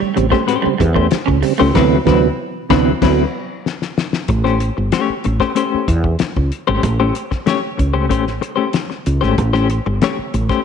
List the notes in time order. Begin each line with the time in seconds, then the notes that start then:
0.00 G3, muted fretless electric bass stroke
0.16 A1 C#3 G3 C4, muted clean electric guitar stroke, closed hi-hat
0.31 G3 A3 C4 C#4 G4 C5, kick, snare
0.47 A2 A3 C#4 G4 C5, closed hi-hat
0.62 C#3 G3 C4, muted fretless electric bass stroke
0.79 E2 G3 C4, muted clean electric guitar stroke, kick, closed hi-hat
0.95 A3 C#4 G4 C5, kick
1.11 G3 C4, muted clean electric guitar stroke, muted fretless electric bass stroke, snare, closed hi-hat
1.26 C#2 A2 C#4, muted clean electric guitar stroke, kick
1.42 C#3 G3 C4, muted clean electric guitar stroke, open hi-hat
1.59 C#2 A3 C#4 G4 C5
1.74 D2 C3 E3 F#3 B3 C4 E4 B4, kick, snare, crash
2.05 D2 C3 E3 F#3 B3 C4 E4 B4, kick, snare
2.69 D2 C3 E3 F#3 B3 C4 E4 B4, kick, snare
3.02 D2 F#3 B3 C4 E4 B4, kick, snare, crash
3.66 snare
3.82 snare
3.98 snare
4.13 snare
4.28 A1, muted clean electric guitar stroke, kick, closed hi-hat
4.44 A3 C#4 G4 C5, snare
4.60 muted clean electric guitar stroke, closed hi-hat
4.77 G1, muted clean electric guitar stroke
4.92 A3 C#4 G4 C#5, snare, closed hi-hat
5.09 muted fretless electric bass stroke
5.24 A1, muted clean electric guitar stroke, closed hi-hat
5.40 A3 C#4 G4 C5, kick, snare
5.55 A3 C#4 G4 C5, closed hi-hat
5.74 muted fretless electric bass stroke
5.88 E2, muted clean electric guitar stroke, kick, closed hi-hat
6.04 muted clean electric guitar stroke, kick
6.19 muted clean electric guitar stroke, muted fretless electric bass stroke, snare, closed hi-hat
6.36 C#2, muted clean electric guitar stroke, kick
6.52 closed hi-hat
6.67 G#1 A3 C#4 G4 C5
6.83 A1, muted clean electric guitar stroke, kick, closed hi-hat
7.00 A3 C#4 G4 C5
7.15 muted clean electric guitar stroke, closed hi-hat
7.31 muted clean electric guitar stroke, muted fretless electric bass stroke, kick, snare
7.46 A3 C#4 G4 C#5, snare, closed hi-hat
7.77 C#2, muted clean electric guitar stroke, kick, closed hi-hat
7.94 A3 C#4 G4 C5
8.09 A1 A3 C#4 G4 C5, kick, closed hi-hat
8.27 snare
8.41 muted clean electric guitar stroke, closed hi-hat
8.56 A3 C#4 G4 C5
8.73 muted clean electric guitar stroke, snare, closed hi-hat
8.90 muted clean electric guitar stroke, snare
9.06 C#2, closed hi-hat
9.21 G#1 A3 C#4 G4 C5, snare
9.38 A1, muted clean electric guitar stroke, kick, closed hi-hat
9.53 A3 C#4 G4 C5, snare
9.70 muted clean electric guitar stroke, closed hi-hat
9.86 G1, muted clean electric guitar stroke
10.02 A3 C#4 G4 C#5, snare, closed hi-hat
10.18 muted fretless electric bass stroke
10.34 A1, muted clean electric guitar stroke, closed hi-hat
10.49 A3 C#4 G4 C5, kick, snare